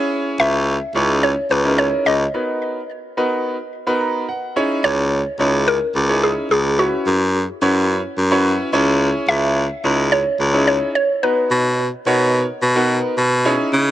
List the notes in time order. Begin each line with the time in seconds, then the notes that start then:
Already playing: C#4 E4 G#4 C#5
0.40 C#2 E5
0.95 C#2 C#4 D#4 E4 G#4 C#5
1.23 C#5
1.51 C#2 B4
1.64 C#4 D#4 E4 G#4 A#4
1.78 C#5
2.06 C#2 D#5
2.34 B3 D#4 F#4 A#4 B4
3.17 B3 D#4 F#4 A#4 B4
3.87 B3 D#4 F#4 A#4 B4
4.01 A#5
4.29 F#5
4.56 C#4 D#4 E4 G#4 C#5
4.84 C#2 C#5
5.39 C#2 C#4 D#4 E4 G#4 C#5
5.68 A#4
5.95 C#2
6.09 C#4 D#4 E4 G#4 C#5
6.23 G#4
6.51 C#2 G#4
6.78 C#4 E4 F#4 B4 C#5
7.06 F#2
7.62 F#2 C#4 E4 F#4 B4 C#5
8.17 F#2
8.31 C#4 E4 F#4 B4 C#5
8.73 C#2 C#4 E4 G#4 C#5
9.28 C#2 E5
9.84 C#2 C#4 D#4 E4 G#4 D#5
10.12 C#5
10.40 C#2
10.53 C#4 D#4 E4 G#4 C#5
10.68 C#5
10.95 C#5
11.23 B3 D#4 F#4 B4 A#5
11.51 B2
12.06 B2 B3 D#4 F#4 A#4 C#5
12.62 B2
12.76 B3 D#4 F#4 A#4 B4
13.18 B2
13.45 C#4 D#4 E4 G#4 C#5
13.73 C#3